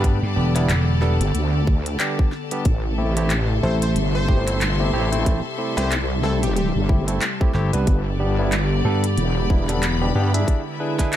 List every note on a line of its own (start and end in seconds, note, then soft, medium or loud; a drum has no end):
0.00 0.20 G2 loud
0.00 2.61 D3 medium
0.00 0.18 G3 medium
0.00 0.18 B3 medium
0.00 2.61 B3 medium
0.00 0.18 D4 medium
0.00 4.75 G4 medium
0.00 0.18 B4 loud
0.00 3.46 D5 medium
0.00 10.48 A5 medium
0.00 2.65 B5 medium
0.04 2.62 A4 medium
0.04 kick loud
0.04 closed hi-hat medium
0.23 0.34 G2 loud
0.36 0.67 E1 loud
0.36 0.53 G3 medium
0.36 0.53 B3 medium
0.36 0.53 D4 medium
0.36 0.53 G4 loud
0.55 0.71 G3 medium
0.55 0.71 B3 medium
0.55 0.71 D4 medium
0.55 0.71 E4 loud
0.55 snare soft
0.55 closed hi-hat medium
0.69 1.18 E1 loud
0.69 clap loud
0.69 closed hi-hat medium
1.02 1.22 G3 loud
1.02 1.22 B3 medium
1.02 1.22 D4 medium
1.02 1.22 A4 loud
1.02 snare soft
1.20 1.32 G1 loud
1.20 closed hi-hat medium
1.34 1.97 D2 medium
1.34 closed hi-hat medium
1.67 kick loud
1.86 closed hi-hat medium
2.00 2.29 G3 medium
2.00 2.29 B3 medium
2.00 2.29 D4 medium
2.00 2.29 G4 medium
2.00 clap loud
2.00 closed hi-hat medium
2.19 kick loud
2.32 snare soft
2.51 2.63 G3 loud
2.51 2.64 B3 medium
2.51 2.64 D4 medium
2.51 2.63 G4 loud
2.51 closed hi-hat medium
2.64 3.61 A1 loud
2.64 7.83 C3 medium
2.64 5.24 A3 medium
2.64 10.44 G4 medium
2.64 8.92 A4 medium
2.64 kick loud
2.64 closed hi-hat medium
2.83 8.92 E5 medium
2.98 3.14 A3 medium
2.98 3.14 C4 medium
2.98 3.14 E4 medium
2.98 3.14 G4 loud
3.17 3.32 A3 medium
3.17 3.32 C4 medium
3.17 3.32 E4 medium
3.17 3.32 G4 loud
3.17 7.87 C6 loud
3.17 closed hi-hat medium
3.30 clap loud
3.30 closed hi-hat medium
3.63 3.94 A1 loud
3.63 3.83 A3 loud
3.63 3.83 C4 medium
3.63 3.83 E4 medium
3.63 3.83 A4 loud
3.63 3.75 C5 medium
3.82 3.91 C5 medium
3.82 closed hi-hat medium
3.96 4.91 G1 medium
3.96 closed hi-hat medium
4.15 4.61 C5 loud
4.28 4.44 A3 medium
4.28 4.44 C4 medium
4.28 4.44 E4 medium
4.28 4.44 G4 medium
4.28 kick loud
4.47 4.62 A3 medium
4.47 4.62 C4 medium
4.47 4.62 E4 medium
4.47 4.62 A4 medium
4.47 snare soft
4.47 closed hi-hat medium
4.61 clap loud
4.61 closed hi-hat medium
4.80 4.90 A3 medium
4.80 4.90 C4 medium
4.80 4.90 E4 medium
4.80 4.90 G4 loud
4.93 5.42 A1 loud
4.93 5.09 A3 loud
4.93 5.09 C4 medium
4.93 5.09 E4 medium
4.93 5.09 G4 loud
5.12 5.39 A3 medium
5.12 5.39 C4 medium
5.12 5.39 E4 medium
5.12 5.39 C5 medium
5.12 closed hi-hat medium
5.26 7.84 G3 medium
5.26 kick loud
5.26 closed hi-hat medium
5.58 5.74 A3 medium
5.58 5.74 C4 medium
5.58 5.74 E4 medium
5.58 5.74 G4 medium
5.77 6.72 C2 medium
5.77 5.92 A3 medium
5.77 5.92 C4 medium
5.77 5.92 E4 medium
5.77 5.92 G4 loud
5.77 5.93 C5 medium
5.77 snare medium
5.77 closed hi-hat medium
5.92 clap loud
5.92 closed hi-hat medium
6.23 6.44 A3 loud
6.23 6.44 C4 medium
6.23 6.44 E4 medium
6.23 6.44 A4 loud
6.23 6.39 A4 medium
6.23 snare soft
6.43 6.52 G4 medium
6.43 closed hi-hat medium
6.56 6.68 G4 medium
6.56 closed hi-hat medium
6.75 7.19 G1 loud
6.89 7.05 A3 medium
6.89 7.05 C4 medium
6.89 7.05 E4 medium
6.89 7.05 G4 medium
6.89 kick loud
7.08 7.23 A3 medium
7.08 7.23 C4 medium
7.08 7.23 E4 medium
7.08 7.23 A4 medium
7.08 closed hi-hat medium
7.22 clap loud
7.22 closed hi-hat medium
7.40 7.51 A3 medium
7.40 7.51 C4 medium
7.40 7.51 E4 medium
7.40 7.51 G4 loud
7.40 kick loud
7.54 7.70 G1 loud
7.54 7.70 A3 loud
7.54 7.70 C4 medium
7.54 7.70 E4 medium
7.54 7.70 G4 loud
7.54 snare soft
7.73 7.85 C2 loud
7.73 8.01 G3 medium
7.73 8.01 B3 medium
7.73 8.01 D4 medium
7.73 8.00 B4 loud
7.73 closed hi-hat medium
7.87 8.83 G1 loud
7.87 10.45 D3 medium
7.87 10.45 B3 medium
7.87 10.48 G4 medium
7.87 kick loud
7.87 closed hi-hat medium
7.99 11.16 D5 medium
8.20 8.36 G3 medium
8.20 8.36 B3 medium
8.20 8.36 D4 medium
8.20 8.36 G4 medium
8.39 8.54 G3 medium
8.39 8.54 B3 medium
8.39 8.54 D4 medium
8.39 8.54 E4 loud
8.52 clap loud
8.52 closed hi-hat medium
8.76 11.16 B5 loud
8.85 9.15 G2 loud
8.85 9.05 G3 medium
8.85 9.05 B3 medium
8.85 9.05 D4 medium
8.85 9.05 A4 loud
9.04 closed hi-hat medium
9.17 10.13 E1 loud
9.17 closed hi-hat medium
9.50 9.66 G3 medium
9.50 9.66 B3 medium
9.50 9.66 D4 medium
9.50 9.66 E4 medium
9.50 kick loud
9.69 9.84 G3 medium
9.69 9.84 B3 medium
9.69 9.84 D4 medium
9.69 9.84 A4 medium
9.69 snare soft
9.69 closed hi-hat medium
9.83 clap loud
9.83 closed hi-hat medium
10.01 10.12 G3 loud
10.01 10.12 B3 medium
10.01 10.12 D4 medium
10.01 10.12 G4 loud
10.15 10.45 G2 loud
10.15 10.31 G3 loud
10.15 10.31 B3 medium
10.15 10.31 D4 loud
10.15 10.31 G4 loud
10.34 10.61 D4 medium
10.34 10.61 E4 medium
10.34 10.61 G#4 medium
10.34 10.61 E5 medium
10.34 closed hi-hat medium
10.47 11.16 D3 medium
10.47 11.16 G#3 medium
10.47 11.16 E4 medium
10.47 kick loud
10.47 closed hi-hat medium
10.69 11.16 B4 medium
10.69 11.16 E5 loud
10.80 10.96 D4 medium
10.80 10.96 E4 medium
10.80 10.96 G#4 medium
10.80 10.96 B4 loud
10.99 11.14 D4 medium
10.99 11.14 E4 medium
10.99 11.14 G#4 medium
10.99 11.14 B4 loud
10.99 kick medium
10.99 snare medium
10.99 closed hi-hat medium
11.13 clap loud
11.13 closed hi-hat medium